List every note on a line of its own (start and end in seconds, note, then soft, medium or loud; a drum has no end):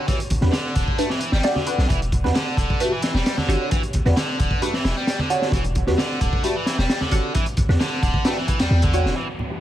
0.00 0.39 D4 medium
0.00 0.39 F#4 medium
0.00 0.39 G4 medium
0.00 0.39 C#5 loud
0.08 0.18 E3 medium
0.08 kick loud
0.08 closed hi-hat medium
0.20 closed hi-hat soft
0.30 kick medium
0.30 closed hi-hat medium
0.30 high conga medium
0.30 low conga medium
0.41 0.50 E2 medium
0.41 0.53 D4 medium
0.41 0.53 F#4 medium
0.41 0.53 G4 medium
0.41 0.53 B4 medium
0.41 snare soft
0.41 high conga medium
0.52 0.74 D3 medium
0.52 snare loud
0.52 closed hi-hat medium
0.75 0.84 D1 loud
0.75 0.97 D3 medium
0.75 kick medium
0.75 closed hi-hat medium
0.88 kick medium
0.98 1.09 A3 medium
0.98 1.10 D4 medium
0.98 1.10 F#4 medium
0.98 1.10 G4 medium
0.98 1.10 B4 medium
0.98 closed hi-hat medium
1.10 1.20 E3 medium
1.10 snare soft
1.21 1.31 E3 medium
1.21 closed hi-hat medium
1.32 1.41 G1 medium
1.32 1.54 G3 medium
1.32 snare medium
1.43 1.62 D4 medium
1.43 1.62 F#4 medium
1.43 1.62 G4 medium
1.43 1.62 D5 loud
1.43 snare loud
1.43 closed hi-hat medium
1.55 1.88 D3 medium
1.55 snare soft
1.55 high conga medium
1.66 1.78 D4 medium
1.66 1.78 F#4 medium
1.66 1.78 G4 medium
1.66 1.78 B4 medium
1.66 closed hi-hat medium
1.78 1.86 B1 medium
1.78 snare soft
1.89 2.25 E1 medium
1.89 1.99 E3 medium
1.89 kick loud
1.89 closed hi-hat medium
2.02 closed hi-hat soft
2.12 kick medium
2.12 closed hi-hat medium
2.12 high conga medium
2.12 low conga medium
2.23 2.32 E2 medium
2.23 2.35 D4 medium
2.23 2.35 F#4 medium
2.23 2.35 G4 medium
2.23 2.35 B4 medium
2.23 snare soft
2.23 high conga medium
2.35 2.56 D3 medium
2.35 snare loud
2.35 closed hi-hat medium
2.57 2.66 D1 loud
2.57 2.79 D3 medium
2.57 kick medium
2.57 closed hi-hat medium
2.70 kick medium
2.80 2.91 A3 medium
2.80 2.92 D4 medium
2.80 2.92 F#4 medium
2.80 2.92 G4 medium
2.80 2.92 B4 medium
2.80 closed hi-hat medium
2.92 3.02 E3 medium
3.02 3.13 E3 medium
3.02 snare medium
3.02 closed hi-hat medium
3.14 3.23 E1 medium
3.14 3.36 G3 medium
3.14 snare medium
3.26 snare loud
3.26 closed hi-hat medium
3.37 3.70 D3 medium
3.37 snare soft
3.37 high conga medium
3.48 3.57 G1 medium
3.48 4.03 D4 medium
3.48 4.03 F#4 medium
3.48 4.03 G4 medium
3.48 4.03 C#5 loud
3.48 closed hi-hat medium
3.71 3.81 E3 medium
3.71 kick loud
3.71 closed hi-hat medium
3.83 closed hi-hat soft
3.93 kick medium
3.93 closed hi-hat medium
3.93 high conga medium
3.93 low conga medium
4.05 4.14 E2 medium
4.05 4.16 D4 medium
4.05 4.16 F#4 medium
4.05 4.16 G4 medium
4.05 4.16 B4 medium
4.05 snare soft
4.05 high conga medium
4.17 4.38 D3 medium
4.17 snare loud
4.17 closed hi-hat medium
4.39 4.48 D1 loud
4.39 4.61 D3 medium
4.39 kick medium
4.39 closed hi-hat medium
4.51 kick medium
4.62 4.73 A3 medium
4.62 4.73 D4 medium
4.62 4.73 F#4 medium
4.62 4.73 G4 medium
4.62 4.73 B4 medium
4.62 closed hi-hat medium
4.74 4.83 E3 medium
4.74 snare soft
4.84 4.93 E1 medium
4.84 4.95 E3 medium
4.84 snare loud
4.84 closed hi-hat medium
4.97 5.18 G3 medium
5.07 snare loud
5.07 closed hi-hat medium
5.19 5.52 D3 medium
5.19 high conga medium
5.30 5.85 D4 medium
5.30 5.84 F#4 medium
5.30 5.85 G4 medium
5.30 5.85 C#5 loud
5.30 closed hi-hat medium
5.42 snare soft
5.52 5.89 E1 loud
5.52 5.63 E3 medium
5.52 kick loud
5.52 closed hi-hat medium
5.64 closed hi-hat soft
5.75 kick medium
5.75 closed hi-hat medium
5.75 high conga medium
5.75 low conga medium
5.87 5.95 E2 medium
5.87 5.98 D4 medium
5.87 5.98 F#4 medium
5.87 5.98 G4 medium
5.87 5.98 B4 medium
5.87 snare soft
5.87 high conga medium
5.98 6.20 D3 medium
5.98 snare loud
5.98 closed hi-hat medium
6.21 6.30 D1 loud
6.21 6.43 D3 medium
6.21 kick medium
6.21 closed hi-hat medium
6.33 kick loud
6.43 6.54 A3 medium
6.43 6.55 D4 medium
6.43 6.55 F#4 medium
6.43 6.55 G4 medium
6.43 6.55 B4 medium
6.43 closed hi-hat medium
6.56 6.65 E3 medium
6.66 6.77 E3 medium
6.66 snare soft
6.66 closed hi-hat medium
6.78 6.86 E1 medium
6.78 7.00 G3 medium
6.78 snare medium
6.90 snare loud
6.90 closed hi-hat medium
7.01 7.34 D3 medium
7.01 snare soft
7.01 high conga medium
7.11 7.21 G1 medium
7.11 7.66 D4 medium
7.11 7.66 F#4 medium
7.11 7.66 G4 medium
7.11 7.66 C#5 loud
7.11 closed hi-hat medium
7.35 7.45 E3 medium
7.35 kick loud
7.35 closed hi-hat medium
7.46 closed hi-hat soft
7.57 kick loud
7.57 closed hi-hat medium
7.57 high conga medium
7.57 low conga medium
7.69 7.77 E2 medium
7.69 7.80 D4 medium
7.69 7.80 F#4 medium
7.69 7.80 G4 medium
7.69 7.80 B4 medium
7.69 snare soft
7.69 high conga medium
7.80 8.01 D3 medium
7.80 snare loud
7.80 closed hi-hat medium
8.02 8.11 D1 loud
8.02 8.24 D3 medium
8.02 kick medium
8.02 closed hi-hat medium
8.14 kick loud
8.14 high conga medium
8.25 8.36 A3 medium
8.25 8.37 D4 medium
8.25 8.37 F#4 medium
8.25 8.37 G4 medium
8.25 8.37 B4 medium
8.25 snare loud
8.25 closed hi-hat medium
8.37 8.47 E3 medium
8.48 8.58 E3 medium
8.48 kick medium
8.48 closed hi-hat medium
8.59 8.69 E2 soft
8.59 8.82 G3 medium
8.59 snare medium
8.59 closed hi-hat medium
8.71 9.06 E2 medium
8.82 9.15 D3 medium
8.82 kick medium
8.82 closed hi-hat medium
8.82 high conga medium
8.93 9.39 D4 medium
8.93 9.39 F#4 medium
8.93 9.39 G4 medium
8.93 9.39 C#5 loud
8.93 closed hi-hat medium
9.05 9.13 E1 medium
9.05 snare soft
9.16 9.26 E3 medium
9.16 9.60 E3 medium
9.16 9.60 G3 medium
9.16 9.60 D4 medium
9.16 9.60 F#5 medium
9.16 downlifter medium
9.39 low conga medium
9.51 9.60 D4 medium
9.51 9.60 F#4 medium
9.51 9.60 G4 medium
9.51 9.60 B4 medium